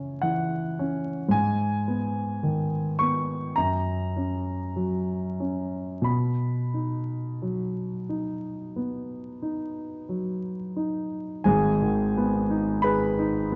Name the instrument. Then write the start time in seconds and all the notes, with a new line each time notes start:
grand piano
Already playing: C#3 C#4
0.22 E3 F#5
0.79 C#4
1.28 G#2 G#5
1.88 B3
2.43 D#3
2.99 B3 C#6
3.56 F#2 A#5
4.16 C#4
4.76 F#3
5.40 C#4
6.02 B2 B5
6.74 D#4
7.42 F#3
8.09 D#4
8.76 B3
9.42 D#4
10.09 F#3
10.76 D#4
11.44 G#1 G#2 G#4 G#5
11.82 D#3
12.17 B3
12.50 D#4
12.82 G#4 B4 B5
13.19 D#4
13.52 B3